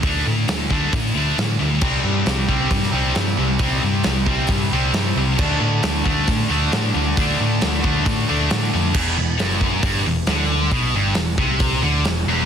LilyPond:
<<
  \new Staff \with { instrumentName = "Distorted electric guitar" } { \clef bass \time 4/4 \key e \minor \tempo 4 = 135 r1 | <c g c'>2~ <c g c'>8 <c g c'>8 <c g c'>4 | <c g c'>2~ <c g c'>8 <c g c'>8 <c g c'>4 | <d a d'>2~ <d a d'>8 <d a d'>8 <d a d'>4 |
<d a d'>2~ <d a d'>8 <d a d'>8 <d a d'>4 | r1 | r1 | }
  \new Staff \with { instrumentName = "Distorted electric guitar" } { \clef bass \time 4/4 \key e \minor <d a d'>8 <d a>8 <d a>8 <d a d'>8 <d a>8 <d a d'>8 <d a>8 <d a>8 | <c g c'>8 <c g>8 <c g>8 <c g c'>8 <c g>8 <c g c'>8 <c g>8 <c g>8 | <c g c'>8 <c g>8 <c g>8 <c g c'>8 <c g>8 <c g c'>8 <c g>8 <c g>8 | <d a d'>8 <d a>8 a8 <d a d'>8 <d a>8 <d a d'>8 <d a>8 <d a>8 |
<d a d'>8 <d a>8 <d a>8 <d a d'>8 <d a>8 <d a d'>8 <d a>8 <d a>8 | e,8 e,8 fis,4 g,8 e,8 d4 | b,8 g,8 e,8 c4 d8 e,8 e,8 | }
  \new Staff \with { instrumentName = "Distorted electric guitar" } { \clef bass \time 4/4 \key e \minor <d a d'>8 <d a>8 <d a>8 <d a d'>8 <d a>8 <d a d'>8 <d a>8 <d a>8 | <c g c'>8 <c g>8 <c g>8 <c g c'>8 <c g>8 <c g c'>8 <c g>8 <c g>8 | <c g c'>8 <c g>8 <c g>8 <c g c'>8 <c g>8 <c g c'>8 <c g>8 <c g>8 | <d a d'>8 <d a>8 <d a>8 <d a d'>8 <d a>8 <d a d'>8 <d a>8 <d a>8 |
<d a d'>8 <d a>8 <d a>8 <d a d'>8 <d a>8 <d a d'>8 <d a>8 <d a>8 | e,8 e,8 fis,4 g,8 e,8 d4 | b,8 g,8 e,8 c4 d8 e,8 e,8 | }
  \new Staff \with { instrumentName = "Picked electric bass" } { \clef bass \time 4/4 \key e \minor d,8 a,8 d,8 d,8 a,8 d,8 a,8 d,8 | c,8 g,8 c,8 c,8 g,8 c,8 g,8 c,8 | c,8 g,8 c,8 c,8 g,8 c,8 g,8 c,8 | d,8 a,8 d,8 d,8 a,8 d,8 a,8 d,8 |
d,8 a,8 d,8 d,8 a,8 d,8 a,8 f,8 | e,,8 e,,8 fis,,4 g,,8 e,,8 d,4 | b,,8 g,,8 r8 c,4 d,8 e,,8 e,,8 | }
  \new DrumStaff \with { instrumentName = "Drums" } \drummode { \time 4/4 <hho bd>4 <hho sn>8 bd8 <hho bd>4 <hho sn>4 | <cymc bd>4 <hho sn>8 bd8 <hho bd>16 sn8. <hho sn>16 sn8. | <hho bd>4 <hho sn>8 bd8 <hho bd>4 <hho sn>4 | <cymc bd>4 <hho sn>8 bd8 <hho bd>4 <hho sn>4 |
<hho bd>4 <hho sn>8 bd8 <hho bd>4 <hho sn>16 sn8. | <cymc bd>4 <hho sn>8 bd8 <hho bd>4 <hho sn>4 | <hho bd>4 <hho sn>8 bd8 <hho bd>4 <hho sn>4 | }
>>